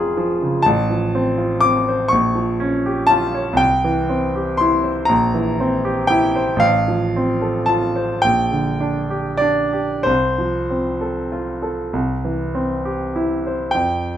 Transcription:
Already playing: F1 F2 C#4 F4 G#4 C#5 A#5 C6
0.17 F3
0.42 C#3
0.62 A1 A5
0.90 F3
1.15 C4
1.38 F4
1.61 C4 D6
1.88 C5
2.08 A#1 C#6
2.35 F3
2.60 C#4
2.86 G4
3.07 F4 A5
3.35 C#5
3.53 C2 G5
3.84 E3
4.09 C4
4.35 G4
4.57 E4 C6
4.84 C5
5.05 A#1 A#5
5.34 E3
5.60 C4
5.85 G4
6.07 E4 G5
6.36 C5
6.56 A1 F5
6.88 F3
7.16 C4
7.41 A4
7.66 F4 A5
7.96 C5
8.22 A#1 G5
8.52 D3
8.80 D4
9.11 G4
9.37 D4 D5
9.73 G4
10.03 C2 C5
10.38 F3
10.70 C4
11.01 A4
11.32 F4
11.62 A4
11.93 C2
12.25 E3
12.55 C4
12.85 G4
13.16 E4
13.47 C5
13.71 F2 G5

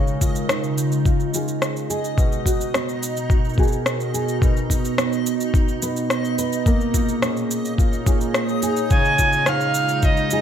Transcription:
Already playing: C#3 G#3 D#4 G#4 A#4 D#5
0.07 cabasa
0.17 F4
0.21 F4, kick, cabasa
0.36 cabasa
0.49 D#4, cross-stick, cabasa
0.64 cabasa
0.78 cabasa
0.92 D#5, cabasa
1.05 F4, kick, cabasa
1.20 cabasa
1.34 D#4 F4 G#4, cabasa
1.48 cabasa
1.62 cross-stick, cabasa
1.77 cabasa
1.90 G#4, cabasa
2.04 cabasa
2.18 B2, kick, cabasa
2.32 cabasa
2.45 B3 F#4, kick, cabasa
2.61 F#4, cabasa
2.74 B3, cross-stick, cabasa
2.89 cabasa
3.03 cabasa
3.15 A#4, cabasa
3.30 F#4, kick, cabasa
3.45 cabasa
3.49 cabasa
3.54 cabasa
3.58 B3 F#4 G#4, kick, cabasa
3.63 cabasa
3.68 cabasa
3.72 cabasa
3.86 cross-stick, cabasa
4.00 cabasa
4.14 G#4, cabasa
4.29 cabasa
4.42 B2, kick, cabasa
4.57 cabasa
4.70 D#4, kick, cabasa
4.75 D#5
4.85 cabasa
4.98 B3, cross-stick, cabasa
5.13 cabasa
5.26 cabasa
5.41 cabasa
5.54 D#4, kick, cabasa
5.68 cabasa
5.82 B3 D#4 B4, cabasa
5.96 cabasa
6.10 cross-stick, cabasa
6.25 cabasa
6.38 B4, cabasa
6.52 cabasa
6.65 A#2 A#3, kick, cabasa
6.77 A#3 G#4, cabasa
6.94 F4, kick, cabasa
6.99 C#5
7.09 cabasa
7.22 C#4, cross-stick, cabasa
7.37 cabasa
7.51 cabasa
7.65 cabasa
7.78 F4, kick, cabasa
7.93 cabasa
8.06 C#4 F4 G#4, kick, cabasa
8.21 cabasa
8.34 cross-stick, cabasa
8.49 cabasa
8.62 G#4, cabasa
8.77 cabasa
8.90 C#3 G#5, kick, cabasa
9.05 cabasa
9.15 G#3 F4, kick, cabasa
9.32 F4, cabasa
9.46 D#4 F5, cross-stick, cabasa
9.61 cabasa
9.74 cabasa
9.89 D#5, cabasa
10.03 F4 D#5, kick, cabasa
10.17 cabasa
10.31 D#4 F4 G#4, cabasa

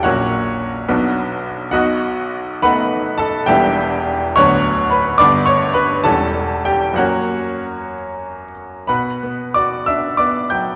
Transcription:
0.03 A#1 A#2 F#3 C#4 F#4 C#5 F#5
0.89 B1 B2 F#3 B3 D4
1.71 B1 B2 F#4 D#5 F#5
2.62 A3 B3 D#4 B4 F#5 B5
3.18 A4 A5
3.46 E1 E2 G3 B3 D4 G4 E5 G5
4.36 D1 D2 F#3 B3 D4 C#5 F#5 C#6
4.90 B4 B5
5.18 G1 G2 D3 B3 D4 D5 B5 D6
5.46 C#5 C#6
5.74 B4 B5
6.04 E1 E2 G3 C#4 A4 A5
6.65 G4 G5
6.93 F#2 F#3 A#3 C#4 F#4 C#5 F#5
8.87 B2 B4 F#5 B5
9.23 B3
9.54 F#4 D5 D6
9.86 D4 E5 E6
10.17 B3 D5 D6
10.50 F#3 G5 G6

